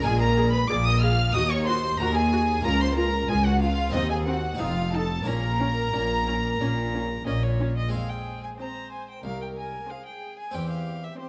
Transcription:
0.01 G#3 D4 F4 G#4 G#5
0.05 A#1 A#2
0.19 A#4 A#5
0.37 G#4
0.52 B4 B5
0.68 A#1 A#2 G#4 D5 D6
0.84 D#5 D#6
1.00 G#4 F5 F6
1.30 A#3 D#4 F#4 D#6
1.34 D#2 F#4 D#5 D#6
1.51 C#5 C#6
1.66 F#4 C5 C6
1.98 D#2 F#4 A#4 A#5
2.15 G#4 G#5
2.32 F#4
2.60 C#2 A#3 F4 A#5
2.65 C#2 A#4 A#5
2.80 C5 C6
2.96 F4 A#4 A#5
3.29 C#2 F4 G#4 G#5
3.46 F#4 F#5
3.60 F4 F5
3.90 C4 D#4 F#4 D#5
3.94 D#2 C4 D#4 D#5
4.09 G#4 G#5
4.24 C4 F#4 F#5
4.55 C4 D#4 A4 F5
4.59 F1 F2 D#4 F4 F5
4.92 D#4 A4 A5
5.22 A#1 A#2 A#3 C#4 A#4 A#5
5.27 A#2 A#5
5.60 C#4
5.93 A#1 A#2 C#4
6.27 C#4
6.60 A#1 A#2 C#4
6.95 C#4
7.26 A#1 A#2 C#4 D#5
7.44 C#5
7.59 C#4
7.77 D#5
7.88 F2 G#3 C4 G#4 C5
7.93 F2 F5
8.09 G5
8.43 G#5
8.58 C4 G#4 C5 A#5
8.92 G#5
9.10 G5
9.23 C2 A#4 F5
9.42 G5
9.58 G#5
9.86 C4 G#4 F5
10.06 G5
10.39 G#5
10.51 E2 C4 G4 C5 G5
10.70 F5
11.04 E5
11.18 C4 G4 C5

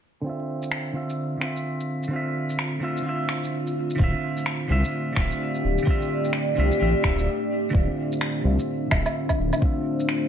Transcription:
0.21 D3 A3 C4
0.26 F4 E5
0.62 D4, shaker
0.71 finger snap
0.78 F4
0.93 D3 C4 F4 C5
0.97 E5
1.10 shaker
1.37 D3 C4
1.41 F4 E5, finger snap
1.56 shaker
1.75 E5
1.80 shaker
2.03 shaker
2.08 D3 C4
2.13 F4 E5
2.50 shaker
2.59 finger snap
2.80 D3 C4 F4
2.84 E5
2.97 shaker
3.01 D3 C4
3.06 F4 E5
3.29 finger snap
3.44 shaker
3.67 shaker
3.90 G4, shaker
3.96 D3 C4, kick
4.00 D1 F4
4.04 E5
4.37 shaker
4.41 D5
4.46 finger snap
4.68 C2 D3 C4 F4
4.72 E5
4.85 shaker
5.13 D3 C4, finger snap
5.17 D1 F4 E5, kick
5.31 shaker
5.55 shaker
5.64 D1
5.78 shaker
5.83 D3 C4
5.87 F4 E5, kick
6.02 shaker
6.25 shaker
6.33 finger snap
6.55 C2 D3 C4 F4
6.60 E5
6.71 shaker
6.78 A1 D3 C4 F4
6.82 E5
7.03 D1 D3 C4 F4, finger snap, kick
7.07 E5
7.19 shaker
7.70 D3 C4
7.74 D1 F4 E5, kick
8.06 F4
8.12 C5, shaker
8.21 finger snap
8.43 C2 D3 C4 F4 E5
8.59 shaker
8.66 E5
8.87 D3 C4
8.91 D1 F4, finger snap, kick, low woodblock
8.96 E5
9.06 low woodblock, shaker
9.29 kick, low woodblock, shaker
9.39 D1
9.53 low woodblock, shaker
9.57 D3 C4
9.62 F4 E5, kick
10.00 shaker
10.09 finger snap

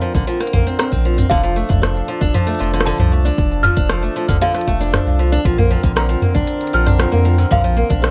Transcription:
Already playing: D3 C4 A#4
0.01 F3
0.15 A#1 D3, kick, closed hi-hat, cabasa
0.27 F3, closed hi-hat, cabasa
0.40 A#3, cross-stick, closed hi-hat, cabasa
0.47 closed hi-hat
0.53 A#1 A#3, kick, mid tom
0.67 C4, closed hi-hat, cabasa
0.79 C4 A#5, cross-stick, closed hi-hat, cabasa
0.92 A#1 C4, kick, cabasa
1.05 F3
1.18 C4, closed hi-hat, mid tom, cabasa
1.30 F1 D3 F3 D4 A4 F5, kick, cabasa
1.38 closed hi-hat
1.43 F3, cabasa
1.56 A3
1.69 F1 D4, kick, closed hi-hat, mid tom, cabasa
1.82 C5, cross-stick, closed hi-hat, cabasa
1.96 cabasa
2.08 F3
2.21 F1 D4, kick, closed hi-hat, cabasa
2.34 F3, closed hi-hat, mid tom, cabasa
2.47 A3, closed hi-hat, cabasa
2.55 closed hi-hat
2.59 F1 F3, closed hi-hat
2.63 closed hi-hat
2.74 D3, cross-stick, closed hi-hat, cabasa
2.81 cross-stick
2.86 D3 A5, closed hi-hat, cabasa
2.99 C2 F3, mid tom, cabasa
3.12 A3
3.25 D4, closed hi-hat, cabasa
3.38 F1, kick, closed hi-hat, cabasa
3.52 cabasa
3.63 F3 F6, mid tom
3.77 F1 D4, kick, closed hi-hat, cabasa
3.89 F3, cross-stick, closed hi-hat, cabasa
4.03 A3, cabasa
4.16 F3
4.29 F1 D3, kick, closed hi-hat, mid tom, cabasa
4.41 D3 F5, closed hi-hat, cabasa
4.55 F3, cross-stick, closed hi-hat, cabasa
4.61 closed hi-hat
4.67 F1 A3, kick
4.81 D4, closed hi-hat, cabasa
4.94 C5, cross-stick, closed hi-hat, mid tom, cabasa
5.07 C2, cabasa
5.19 F3
5.32 D4, closed hi-hat, cabasa
5.44 A#1 D3 F3 C4 A#4, kick, closed hi-hat, cabasa
5.58 A#3, mid tom, cabasa
5.71 F3
5.83 A#1 D3, kick, closed hi-hat, cabasa
5.96 D3 A#5, cross-stick, closed hi-hat, cabasa
6.09 F3, cabasa
6.22 A#3, mid tom
6.35 A#1 D4, kick, closed hi-hat, cabasa
6.47 closed hi-hat, cabasa
6.61 closed hi-hat, cabasa
6.67 closed hi-hat
6.73 A#1 F3 F6
6.86 D4, cross-stick, mid tom, cabasa
6.99 F3, cross-stick, closed hi-hat, cabasa
7.12 F2 A#3, cabasa
7.25 F3
7.38 D3, closed hi-hat, cabasa
7.51 A#1 D3 F5, kick, closed hi-hat, mid tom, cabasa
7.64 F3, cabasa
7.69 cabasa
7.74 A#3, cabasa
7.78 closed hi-hat
7.90 A#1 D4, kick, closed hi-hat, cabasa
8.02 C5, cross-stick, closed hi-hat, cabasa

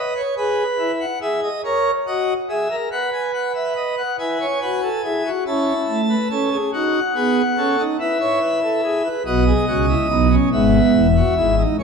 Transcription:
Already playing: B4 D#5
0.16 C#5
0.37 G#4 B4
0.79 E4
1.01 F#5
1.22 G#4 E5
1.43 D#5
1.65 A#4 C#5
2.07 F#4 D#5
2.49 G#4 E5
2.71 A#4
2.92 B4 F#5
3.13 G#5
3.34 F#5
3.55 E5
3.76 D#5
3.98 F#5
4.19 E4 B4 G#5
4.40 C#5
4.62 F#4 B4
4.83 A4
5.04 E4 G#4
5.25 F#4
5.46 C#4 E4 A5
5.89 A3
6.09 B4
6.30 C#4 A4
6.52 G#4
6.73 D#4 F#4 F#5
7.15 B3 G#4
7.57 C#4 A4
7.79 D#4
7.99 E4 B4 E5
8.20 C#5
8.41 B4
8.63 A4
8.84 G#4
9.04 B4
9.26 B1 B2 F#4 D#5
9.46 G#4
9.68 C#2 C#3 F#4
9.89 E4
10.10 B1 B2 D#4
10.31 C#4
10.53 G#1 G#2 B3 E5
10.95 E1 E2
11.16 F#4
11.37 G#1 G#2 E4
11.58 D#4
11.80 A#1 A#2 C#4 C#5

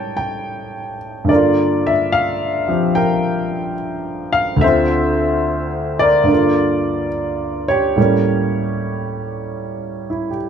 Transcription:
Already playing: A2 G3 A#3 C#4 C#5 G5 A5
0.17 G5
1.24 G2 D3
1.29 A#3 A#4 D5
1.35 F4
1.87 E5
2.12 F5
2.68 F3 C4 G4
2.95 A#4 G5
4.33 F5
4.56 D2
4.61 D3 C4 C5 E5
4.68 F4
5.99 A#4 D5
6.24 G2 D3
6.30 A#3 F4
7.68 G4 C#5
7.96 A2 G3 A#3
8.01 C#4
10.10 E4
10.30 G4

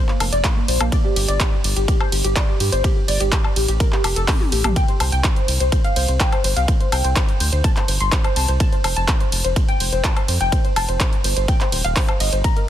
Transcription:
0.09 A#3, clap
0.20 F1 A#3, open hi-hat, ride, high woodblock
0.32 F1 D5, closed hi-hat
0.44 A#3, kick, clap, closed hi-hat, ride
0.57 A#3
0.68 A#1 C5, open hi-hat, ride
0.80 A#1 A#3, closed hi-hat, high woodblock
0.92 D5, kick, closed hi-hat, ride
1.04 G4
1.16 G1 G4, open hi-hat, ride
1.28 G1 D5, closed hi-hat
1.40 G4, kick, clap, closed hi-hat, ride
1.52 G4
1.64 G1, open hi-hat, ride
1.76 G1 G4, closed hi-hat
1.88 G4, kick, closed hi-hat, ride
2.00 C5, high woodblock
2.12 G1 G4, open hi-hat, ride
2.24 G1 G4, closed hi-hat
2.36 D5, kick, clap, closed hi-hat, ride
2.48 G4
2.60 G2 G4, open hi-hat, ride
2.72 G1 C5, closed hi-hat
2.84 G4, kick, closed hi-hat, ride
2.96 G4
3.08 G1 D5, open hi-hat, ride
3.20 G1 G4, closed hi-hat
3.32 G4, kick, clap, closed hi-hat, ride
3.44 high woodblock
3.56 A1 G4, open hi-hat, ride
3.68 A1 G4, closed hi-hat
3.80 A#4, kick, closed hi-hat, ride
3.92 G4, clap
4.04 F1 G4, open hi-hat, ride, high woodblock
4.16 F1 A4, closed hi-hat
4.28 G4, kick, clap, open hi-hat, high tom, ride
4.40 G4, high tom
4.52 A1 G4, open hi-hat, ride
4.64 A1 G4, closed hi-hat, mid tom, high woodblock
4.76 G5, kick, closed hi-hat, ride
4.88 C5, closed hi-hat
5.00 C2 C5, open hi-hat, ride, high woodblock
5.12 C2 G5, closed hi-hat
5.24 C5, kick, clap, closed hi-hat, ride
5.36 C5, closed hi-hat
5.48 C2, open hi-hat, ride
5.60 C2 C5, closed hi-hat
5.72 C5, kick, closed hi-hat, ride
5.84 F5, closed hi-hat
5.96 C2 C5, open hi-hat, ride
6.08 C2 C5, closed hi-hat
6.20 G5, kick, clap, closed hi-hat, ride
6.32 C5, closed hi-hat, high woodblock
6.44 G1 C5, open hi-hat, ride
6.57 C2 F5, closed hi-hat
6.68 C5, kick, closed hi-hat, ride
6.80 C5, closed hi-hat
6.92 C2 G5, open hi-hat, ride, high woodblock
7.04 C2 C5, closed hi-hat
7.16 C5, kick, clap, closed hi-hat, ride
7.29 closed hi-hat
7.40 D2 C5, open hi-hat, ride
7.52 D2 C5, closed hi-hat
7.64 A5, kick, closed hi-hat, ride
7.76 C5, clap, closed hi-hat
7.88 G1 C5, open hi-hat, ride
8.00 G1 C6, closed hi-hat
8.12 C5, kick, clap, closed hi-hat, ride
8.24 C5, closed hi-hat, high woodblock
8.36 C2 A5, open hi-hat, ride
8.48 C2 C5, closed hi-hat
8.60 A5, kick, closed hi-hat, ride
8.72 C5, closed hi-hat
8.84 F1 C5, open hi-hat, ride, high woodblock
8.96 F1 A5, closed hi-hat
9.08 C5, kick, clap, closed hi-hat, ride
9.20 C5, closed hi-hat
9.32 F1, open hi-hat, ride
9.44 F1 C5, closed hi-hat
9.56 C5, kick, closed hi-hat, ride
9.68 G5, closed hi-hat
9.80 F1 C5, open hi-hat, ride
9.92 F1 C5, closed hi-hat
10.04 A5, kick, clap, closed hi-hat, ride
10.17 C5, closed hi-hat, high woodblock
10.28 F2 C5, open hi-hat, ride
10.41 F1 G5, closed hi-hat
10.52 C5, kick, closed hi-hat, ride
10.65 C5, closed hi-hat
10.76 F1 A5, open hi-hat, ride, high woodblock
10.89 F1 C5, closed hi-hat
11.00 kick, clap, closed hi-hat, ride
11.13 closed hi-hat
11.24 G1 C5, open hi-hat, ride
11.37 G1 C5, closed hi-hat
11.48 G5, kick, closed hi-hat, ride
11.61 C5, clap, closed hi-hat
11.72 D#1 C5, open hi-hat, ride
11.84 D#1 F5, closed hi-hat
11.96 C5, kick, clap, open hi-hat, ride
12.08 C5, closed hi-hat, high woodblock
12.20 G1 D#5, open hi-hat, ride
12.32 G1 C5, closed hi-hat
12.44 A#5, kick, closed hi-hat, ride
12.56 A#4, closed hi-hat

